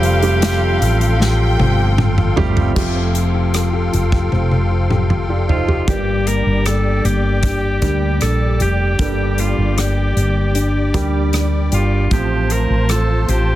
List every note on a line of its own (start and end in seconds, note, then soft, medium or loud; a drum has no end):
0.00 0.77 F1 loud
0.00 2.75 F3 medium
0.00 0.19 G3 medium
0.00 0.20 A3 medium
0.00 0.20 C4 medium
0.00 1.59 C4 medium
0.00 0.20 F4 medium
0.00 0.20 G4 medium
0.00 0.45 G4 medium
0.00 1.95 G4 medium
0.00 2.73 A4 medium
0.00 1.20 F5 loud
0.00 2.73 F5 medium
0.00 2.72 G5 medium
0.00 2.72 C6 medium
0.00 closed hi-hat medium
0.22 1.71 G3 medium
0.22 1.71 A3 medium
0.22 1.71 C4 medium
0.22 1.71 F4 medium
0.22 1.71 G4 medium
0.22 closed hi-hat medium
0.42 1.19 F4 medium
0.42 snare loud
0.42 closed hi-hat loud
0.81 1.55 A1 medium
0.81 3.17 G4 medium
0.81 closed hi-hat medium
1.01 closed hi-hat soft
1.20 1.97 F4 medium
1.20 2.37 G5 loud
1.20 snare medium
1.59 2.33 G1 loud
1.59 2.36 C4 medium
1.59 high tom medium
1.98 3.14 F4 medium
1.98 mid tom medium
2.18 mid tom medium
2.36 2.74 G1 medium
2.36 2.74 G3 medium
2.36 2.74 A3 medium
2.36 2.95 C4 medium
2.36 2.74 C4 medium
2.36 2.74 F4 medium
2.36 2.74 G4 loud
2.36 floor tom loud
2.57 floor tom medium
2.75 3.89 F1 medium
2.75 4.31 F3 medium
2.75 4.24 A3 medium
2.75 4.24 C4 medium
2.75 4.24 F4 medium
2.75 4.24 G4 medium
2.75 5.85 A4 medium
2.75 5.85 F5 medium
2.75 5.85 G5 medium
2.75 5.85 C6 medium
2.75 kick loud
2.75 crash medium
2.95 4.50 C4 medium
3.14 3.52 F4 soft
3.14 closed hi-hat medium
3.34 3.73 G4 medium
3.53 3.91 F4 medium
3.53 cross-stick medium
3.53 closed hi-hat medium
3.73 4.12 G4 medium
3.93 4.30 F1 medium
3.93 4.70 F4 medium
3.93 closed hi-hat medium
4.12 4.90 G4 medium
4.12 kick medium
4.32 5.84 F1 medium
4.32 5.95 F3 medium
4.32 high tom soft
4.51 5.96 C4 soft
4.51 high tom soft
4.71 5.08 F4 soft
4.90 5.29 G4 medium
4.90 mid tom medium
5.10 5.47 F4 soft
5.10 mid tom medium
5.29 5.48 F4 soft
5.29 5.67 G4 soft
5.29 5.48 D5 soft
5.48 5.68 D#4 soft
5.48 5.95 F4 soft
5.48 5.91 F4 medium
5.48 5.67 C5 medium
5.48 floor tom medium
5.68 7.81 G4 medium
5.68 5.87 G4 medium
5.68 floor tom medium
5.87 6.42 G1 medium
5.87 8.98 G2 medium
5.87 7.01 G2 soft
5.87 7.36 G3 soft
5.87 7.36 A#3 soft
5.87 7.36 D4 soft
5.87 7.36 G4 medium
5.87 12.08 G4 medium
5.87 6.29 G4 medium
5.87 12.08 D5 medium
5.87 12.08 G5 soft
5.87 12.08 D6 medium
5.87 kick medium
5.87 closed hi-hat medium
6.26 7.03 A#3 soft
6.26 6.68 A#4 medium
6.26 closed hi-hat medium
6.46 7.01 G1 medium
6.66 7.42 D4 soft
6.66 7.07 A4 medium
6.66 cross-stick medium
6.66 closed hi-hat medium
7.04 7.78 G1 medium
7.04 9.37 A#3 soft
7.04 8.22 G4 medium
7.04 closed hi-hat soft
7.43 8.20 D4 soft
7.43 kick medium
7.43 closed hi-hat medium
7.82 8.19 D2 medium
7.82 8.93 G3 medium
7.82 8.93 A#3 soft
7.82 8.94 D4 soft
7.82 8.59 G4 soft
7.82 8.94 G4 medium
7.82 kick medium
7.82 closed hi-hat medium
8.21 8.61 A#1 medium
8.21 9.76 D4 soft
8.21 8.58 A4 medium
8.21 cross-stick medium
8.21 closed hi-hat medium
8.60 8.96 F1 medium
8.60 10.93 G4 medium
8.60 9.41 G4 medium
8.60 closed hi-hat medium
8.99 9.54 G1 medium
8.99 12.11 G2 medium
8.99 10.12 G2 soft
8.99 10.47 G3 medium
8.99 10.47 A#3 soft
8.99 10.47 D4 soft
8.99 10.48 A4 medium
8.99 kick medium
8.99 closed hi-hat medium
9.38 10.15 A#3 soft
9.38 9.82 F4 medium
9.38 closed hi-hat medium
9.58 10.12 G1 medium
9.77 10.54 D4 medium
9.77 11.35 G4 medium
9.77 cross-stick medium
9.77 closed hi-hat medium
10.16 10.90 G1 medium
10.16 12.19 A#3 soft
10.16 closed hi-hat medium
10.55 11.32 D4 medium
10.55 closed hi-hat medium
10.94 11.68 D2 medium
10.94 12.05 G3 medium
10.94 12.05 A#3 medium
10.94 12.05 D4 medium
10.94 11.71 G4 soft
10.94 12.06 G4 medium
10.94 kick medium
10.94 closed hi-hat medium
11.33 12.19 D4 soft
11.33 cross-stick medium
11.33 closed hi-hat medium
11.72 12.08 G1 medium
11.72 12.09 F4 medium
11.72 12.19 G4 medium
11.72 closed hi-hat medium
12.11 12.66 A1 medium
12.11 13.24 A2 soft
12.11 13.55 F3 medium
12.11 13.55 C4 medium
12.11 13.55 F4 medium
12.11 12.53 G4 medium
12.11 13.55 C5 medium
12.11 13.55 A5 soft
12.11 13.55 C6 medium
12.11 kick medium
12.11 closed hi-hat medium
12.50 13.27 C4 soft
12.50 12.92 A#4 medium
12.50 closed hi-hat medium
12.70 13.24 A1 medium
12.89 13.55 F4 medium
12.89 13.23 A4 medium
12.89 cross-stick medium
12.89 closed hi-hat medium
13.23 13.31 A4 medium
13.28 13.55 A1 medium
13.28 13.55 C4 soft
13.28 13.55 G4 medium
13.28 closed hi-hat medium